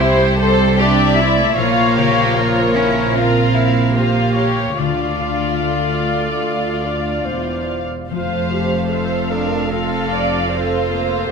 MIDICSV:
0, 0, Header, 1, 9, 480
1, 0, Start_track
1, 0, Key_signature, -1, "major"
1, 0, Tempo, 792602
1, 953, Time_signature, 4, 2, 24, 8
1, 1911, Tempo, 824176
1, 4791, Tempo, 800000
1, 6720, End_track
2, 0, Start_track
2, 0, Title_t, "Violin section"
2, 0, Program_c, 0, 48
2, 0, Note_on_c, 0, 72, 66
2, 474, Note_off_c, 0, 72, 0
2, 474, Note_on_c, 0, 76, 69
2, 945, Note_off_c, 0, 76, 0
2, 956, Note_on_c, 0, 77, 62
2, 1431, Note_off_c, 0, 77, 0
2, 1436, Note_on_c, 0, 73, 60
2, 1913, Note_off_c, 0, 73, 0
2, 1913, Note_on_c, 0, 77, 52
2, 2377, Note_off_c, 0, 77, 0
2, 2384, Note_on_c, 0, 77, 47
2, 2851, Note_off_c, 0, 77, 0
2, 2865, Note_on_c, 0, 77, 43
2, 4650, Note_off_c, 0, 77, 0
2, 4792, Note_on_c, 0, 77, 44
2, 5255, Note_off_c, 0, 77, 0
2, 5280, Note_on_c, 0, 77, 49
2, 6685, Note_off_c, 0, 77, 0
2, 6720, End_track
3, 0, Start_track
3, 0, Title_t, "Clarinet"
3, 0, Program_c, 1, 71
3, 3344, Note_on_c, 1, 69, 50
3, 4064, Note_on_c, 1, 74, 51
3, 4072, Note_off_c, 1, 69, 0
3, 4296, Note_on_c, 1, 72, 48
3, 4304, Note_off_c, 1, 74, 0
3, 4784, Note_off_c, 1, 72, 0
3, 6720, End_track
4, 0, Start_track
4, 0, Title_t, "Viola section"
4, 0, Program_c, 2, 48
4, 0, Note_on_c, 2, 67, 67
4, 0, Note_on_c, 2, 72, 78
4, 228, Note_off_c, 2, 72, 0
4, 235, Note_on_c, 2, 72, 71
4, 451, Note_off_c, 2, 67, 0
4, 468, Note_off_c, 2, 72, 0
4, 469, Note_on_c, 2, 74, 72
4, 471, Note_on_c, 2, 62, 79
4, 707, Note_off_c, 2, 62, 0
4, 710, Note_on_c, 2, 64, 68
4, 951, Note_on_c, 2, 53, 69
4, 952, Note_off_c, 2, 64, 0
4, 952, Note_off_c, 2, 74, 0
4, 953, Note_on_c, 2, 73, 68
4, 1187, Note_off_c, 2, 73, 0
4, 1194, Note_on_c, 2, 73, 62
4, 1426, Note_off_c, 2, 73, 0
4, 1431, Note_on_c, 2, 70, 65
4, 2380, Note_on_c, 2, 67, 51
4, 2381, Note_off_c, 2, 53, 0
4, 2381, Note_on_c, 2, 72, 52
4, 2382, Note_off_c, 2, 70, 0
4, 2616, Note_on_c, 2, 73, 50
4, 2619, Note_off_c, 2, 72, 0
4, 2853, Note_off_c, 2, 73, 0
4, 2857, Note_on_c, 2, 65, 47
4, 2858, Note_off_c, 2, 67, 0
4, 2858, Note_on_c, 2, 74, 43
4, 4669, Note_off_c, 2, 65, 0
4, 4670, Note_off_c, 2, 74, 0
4, 4788, Note_on_c, 2, 72, 50
4, 4789, Note_on_c, 2, 65, 52
4, 5017, Note_off_c, 2, 65, 0
4, 5035, Note_on_c, 2, 67, 49
4, 5252, Note_off_c, 2, 72, 0
4, 5274, Note_on_c, 2, 69, 52
4, 5274, Note_on_c, 2, 72, 55
4, 5278, Note_off_c, 2, 67, 0
4, 5511, Note_off_c, 2, 72, 0
4, 5518, Note_on_c, 2, 70, 52
4, 5749, Note_off_c, 2, 69, 0
4, 5757, Note_off_c, 2, 70, 0
4, 5757, Note_on_c, 2, 65, 54
4, 5757, Note_on_c, 2, 69, 57
4, 5995, Note_on_c, 2, 74, 52
4, 5996, Note_off_c, 2, 69, 0
4, 6228, Note_off_c, 2, 74, 0
4, 6230, Note_on_c, 2, 72, 56
4, 6231, Note_on_c, 2, 69, 53
4, 6233, Note_off_c, 2, 65, 0
4, 6460, Note_off_c, 2, 69, 0
4, 6467, Note_on_c, 2, 69, 53
4, 6702, Note_off_c, 2, 69, 0
4, 6720, Note_off_c, 2, 72, 0
4, 6720, End_track
5, 0, Start_track
5, 0, Title_t, "Harp"
5, 0, Program_c, 3, 46
5, 0, Note_on_c, 3, 48, 65
5, 0, Note_on_c, 3, 55, 61
5, 0, Note_on_c, 3, 60, 52
5, 0, Note_on_c, 3, 64, 55
5, 0, Note_on_c, 3, 72, 59
5, 226, Note_off_c, 3, 60, 0
5, 233, Note_on_c, 3, 60, 58
5, 470, Note_off_c, 3, 64, 0
5, 477, Note_on_c, 3, 64, 56
5, 707, Note_off_c, 3, 72, 0
5, 714, Note_on_c, 3, 72, 57
5, 954, Note_on_c, 3, 46, 68
5, 973, Note_off_c, 3, 60, 0
5, 974, Note_off_c, 3, 72, 0
5, 975, Note_off_c, 3, 48, 0
5, 975, Note_off_c, 3, 55, 0
5, 975, Note_off_c, 3, 64, 0
5, 1191, Note_on_c, 3, 49, 48
5, 2144, Note_on_c, 3, 58, 44
5, 2381, Note_on_c, 3, 65, 43
5, 2618, Note_on_c, 3, 77, 40
5, 2861, Note_on_c, 3, 50, 45
5, 2878, Note_off_c, 3, 49, 0
5, 2878, Note_off_c, 3, 58, 0
5, 2879, Note_off_c, 3, 46, 0
5, 3102, Note_on_c, 3, 62, 35
5, 3335, Note_off_c, 3, 65, 0
5, 3342, Note_on_c, 3, 65, 37
5, 3575, Note_off_c, 3, 77, 0
5, 3582, Note_on_c, 3, 77, 36
5, 3823, Note_on_c, 3, 69, 36
5, 4061, Note_off_c, 3, 62, 0
5, 4068, Note_on_c, 3, 62, 34
5, 4300, Note_off_c, 3, 65, 0
5, 4307, Note_on_c, 3, 65, 33
5, 4544, Note_off_c, 3, 77, 0
5, 4551, Note_on_c, 3, 77, 32
5, 4796, Note_on_c, 3, 53, 52
5, 4809, Note_off_c, 3, 50, 0
5, 4811, Note_off_c, 3, 62, 0
5, 5031, Note_off_c, 3, 65, 0
5, 5038, Note_on_c, 3, 65, 39
5, 5276, Note_off_c, 3, 77, 0
5, 5283, Note_on_c, 3, 77, 42
5, 5520, Note_on_c, 3, 72, 45
5, 5766, Note_on_c, 3, 60, 44
5, 5997, Note_off_c, 3, 65, 0
5, 6004, Note_on_c, 3, 65, 40
5, 6133, Note_off_c, 3, 69, 0
5, 6234, Note_off_c, 3, 77, 0
5, 6241, Note_on_c, 3, 77, 40
5, 6469, Note_off_c, 3, 72, 0
5, 6476, Note_on_c, 3, 72, 42
5, 6720, Note_off_c, 3, 53, 0
5, 6720, Note_off_c, 3, 60, 0
5, 6720, Note_off_c, 3, 65, 0
5, 6720, Note_off_c, 3, 72, 0
5, 6720, Note_off_c, 3, 77, 0
5, 6720, End_track
6, 0, Start_track
6, 0, Title_t, "Violin section"
6, 0, Program_c, 4, 48
6, 0, Note_on_c, 4, 64, 73
6, 234, Note_off_c, 4, 64, 0
6, 237, Note_on_c, 4, 69, 80
6, 469, Note_off_c, 4, 69, 0
6, 471, Note_on_c, 4, 67, 68
6, 710, Note_on_c, 4, 64, 70
6, 712, Note_off_c, 4, 67, 0
6, 949, Note_on_c, 4, 65, 67
6, 952, Note_off_c, 4, 64, 0
6, 1185, Note_off_c, 4, 65, 0
6, 1189, Note_on_c, 4, 67, 69
6, 1428, Note_off_c, 4, 67, 0
6, 1434, Note_on_c, 4, 65, 64
6, 1666, Note_on_c, 4, 64, 56
6, 1671, Note_off_c, 4, 65, 0
6, 1909, Note_off_c, 4, 64, 0
6, 1911, Note_on_c, 4, 65, 62
6, 2141, Note_on_c, 4, 64, 59
6, 2145, Note_off_c, 4, 65, 0
6, 2378, Note_on_c, 4, 65, 53
6, 2380, Note_off_c, 4, 64, 0
6, 2618, Note_off_c, 4, 65, 0
6, 2624, Note_on_c, 4, 67, 49
6, 2862, Note_off_c, 4, 67, 0
6, 2867, Note_on_c, 4, 65, 46
6, 4528, Note_off_c, 4, 65, 0
6, 5761, Note_on_c, 4, 69, 58
6, 6211, Note_off_c, 4, 69, 0
6, 6244, Note_on_c, 4, 65, 51
6, 6713, Note_off_c, 4, 65, 0
6, 6720, End_track
7, 0, Start_track
7, 0, Title_t, "Cello"
7, 0, Program_c, 5, 42
7, 0, Note_on_c, 5, 55, 98
7, 833, Note_on_c, 5, 57, 81
7, 842, Note_off_c, 5, 55, 0
7, 950, Note_off_c, 5, 57, 0
7, 954, Note_on_c, 5, 58, 102
7, 1668, Note_on_c, 5, 61, 86
7, 1677, Note_off_c, 5, 58, 0
7, 1907, Note_on_c, 5, 60, 86
7, 1916, Note_off_c, 5, 61, 0
7, 2379, Note_on_c, 5, 58, 77
7, 2388, Note_off_c, 5, 60, 0
7, 2853, Note_off_c, 5, 58, 0
7, 2856, Note_on_c, 5, 57, 67
7, 4280, Note_off_c, 5, 57, 0
7, 4787, Note_on_c, 5, 57, 76
7, 5517, Note_on_c, 5, 62, 75
7, 5526, Note_off_c, 5, 57, 0
7, 5762, Note_on_c, 5, 60, 66
7, 5771, Note_off_c, 5, 62, 0
7, 6471, Note_on_c, 5, 58, 70
7, 6480, Note_off_c, 5, 60, 0
7, 6718, Note_off_c, 5, 58, 0
7, 6720, End_track
8, 0, Start_track
8, 0, Title_t, "Cello section"
8, 0, Program_c, 6, 48
8, 0, Note_on_c, 6, 48, 70
8, 931, Note_off_c, 6, 48, 0
8, 950, Note_on_c, 6, 46, 68
8, 2835, Note_off_c, 6, 46, 0
8, 2860, Note_on_c, 6, 38, 45
8, 4282, Note_off_c, 6, 38, 0
8, 4303, Note_on_c, 6, 40, 42
8, 4669, Note_off_c, 6, 40, 0
8, 4790, Note_on_c, 6, 41, 57
8, 6684, Note_off_c, 6, 41, 0
8, 6720, End_track
9, 0, Start_track
9, 0, Title_t, "Double bass section"
9, 0, Program_c, 7, 48
9, 0, Note_on_c, 7, 36, 69
9, 931, Note_off_c, 7, 36, 0
9, 952, Note_on_c, 7, 34, 71
9, 2836, Note_off_c, 7, 34, 0
9, 2862, Note_on_c, 7, 38, 47
9, 4283, Note_off_c, 7, 38, 0
9, 4310, Note_on_c, 7, 28, 40
9, 4673, Note_off_c, 7, 28, 0
9, 4793, Note_on_c, 7, 29, 53
9, 6686, Note_off_c, 7, 29, 0
9, 6720, End_track
0, 0, End_of_file